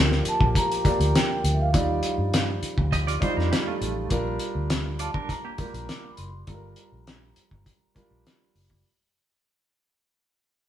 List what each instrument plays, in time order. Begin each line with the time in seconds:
Already playing: fingered electric bass D2, tonewheel organ F3 A#3 G4, grand piano A#3 F4 G4 D5
0.12 snare
0.25 vibraphone A5, closed hi-hat
0.41 fingered electric bass A#1, kick
0.55 vibraphone A#5, kick, closed hi-hat
0.72 closed hi-hat
0.84 grand piano A#3 F4 G4 D5, muted fingered electric bass stroke, kick, closed hi-hat
1.00 fingered electric bass D2, closed hi-hat
1.15 vibraphone G5, snare, closed hi-hat
1.44 fingered electric bass D2, closed hi-hat
1.54 vibraphone E5
1.61 vibraphone F5
1.73 fingered electric bass D#2, grand piano G3 D#4 F4 D5, tonewheel organ G3 F4, kick, closed hi-hat
2.03 closed hi-hat
2.18 fingered electric bass G2
2.34 snare, closed hi-hat
2.62 muted fingered electric bass stroke, closed hi-hat
2.78 fingered electric bass D2, kick
2.92 clean electric guitar G4 D#5, kick, closed hi-hat
3.07 clean electric guitar F4 D5, closed hi-hat
3.20 grand piano G3 D#4 F4 D5, clean electric guitar D#4 C5, muted fingered electric bass stroke, kick, closed hi-hat
3.37 fingered electric bass F2, clean electric guitar D4 A#4, snare
3.52 clean electric guitar A#3 G4, snare, closed hi-hat
3.67 clean electric guitar A3 F4
3.81 fingered electric bass A1, closed hi-hat
4.10 fingered electric bass A#1, grand piano G3 D4 F4 A#4, kick, closed hi-hat
4.39 closed hi-hat
4.55 fingered electric bass D2
4.70 snare, closed hi-hat
4.99 clean electric guitar F4 D5, vibraphone A5, closed hi-hat
5.14 clean electric guitar D4 A#4, kick
5.29 vibraphone A#5, kick, closed hi-hat
5.44 clean electric guitar A#3 G4
5.58 grand piano G3 D4 F4 A#4, muted fingered electric bass stroke, kick, closed hi-hat
5.74 fingered electric bass A#1, closed hi-hat
5.89 vibraphone D6, snare, closed hi-hat
6.12 vibraphone B5
6.17 fingered electric bass F#1, vibraphone C6, closed hi-hat
6.47 fingered electric bass G1, grand piano G3 D4 F4 A4, vibraphone A#5, kick, closed hi-hat
6.55 grand piano A#4
6.76 closed hi-hat
6.92 fingered electric bass A#1
7.07 snare, closed hi-hat
7.36 muted fingered electric bass stroke, closed hi-hat
7.51 fingered electric bass G1, kick
7.66 kick, closed hi-hat
7.95 grand piano G3 D4 F4 A#4, muted fingered electric bass stroke, kick, closed hi-hat
8.11 fingered electric bass A#1
8.27 snare, closed hi-hat
8.55 fingered electric bass F#1, open hi-hat
8.70 kick